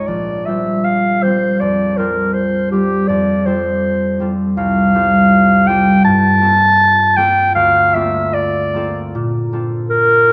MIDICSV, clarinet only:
0, 0, Header, 1, 2, 480
1, 0, Start_track
1, 0, Tempo, 762389
1, 52, Time_signature, 4, 2, 24, 8
1, 1012, Tempo, 740741
1, 4372, Tempo, 777202
1, 6554, End_track
2, 0, Start_track
2, 0, Title_t, "Clarinet"
2, 0, Program_c, 0, 71
2, 45, Note_on_c, 0, 74, 65
2, 286, Note_on_c, 0, 76, 66
2, 296, Note_off_c, 0, 74, 0
2, 530, Note_on_c, 0, 77, 76
2, 540, Note_off_c, 0, 76, 0
2, 772, Note_on_c, 0, 72, 68
2, 781, Note_off_c, 0, 77, 0
2, 1008, Note_on_c, 0, 74, 67
2, 1018, Note_off_c, 0, 72, 0
2, 1247, Note_on_c, 0, 70, 67
2, 1257, Note_off_c, 0, 74, 0
2, 1483, Note_on_c, 0, 72, 71
2, 1493, Note_off_c, 0, 70, 0
2, 1725, Note_off_c, 0, 72, 0
2, 1728, Note_on_c, 0, 67, 68
2, 1965, Note_on_c, 0, 74, 78
2, 1974, Note_off_c, 0, 67, 0
2, 2212, Note_on_c, 0, 72, 65
2, 2222, Note_off_c, 0, 74, 0
2, 2769, Note_off_c, 0, 72, 0
2, 2935, Note_on_c, 0, 77, 84
2, 3644, Note_on_c, 0, 79, 80
2, 3654, Note_off_c, 0, 77, 0
2, 3887, Note_off_c, 0, 79, 0
2, 3890, Note_on_c, 0, 81, 105
2, 4604, Note_on_c, 0, 79, 91
2, 4613, Note_off_c, 0, 81, 0
2, 4836, Note_off_c, 0, 79, 0
2, 4840, Note_on_c, 0, 77, 93
2, 5081, Note_on_c, 0, 76, 91
2, 5090, Note_off_c, 0, 77, 0
2, 5327, Note_on_c, 0, 74, 83
2, 5337, Note_off_c, 0, 76, 0
2, 5818, Note_off_c, 0, 74, 0
2, 6290, Note_on_c, 0, 70, 98
2, 6554, Note_off_c, 0, 70, 0
2, 6554, End_track
0, 0, End_of_file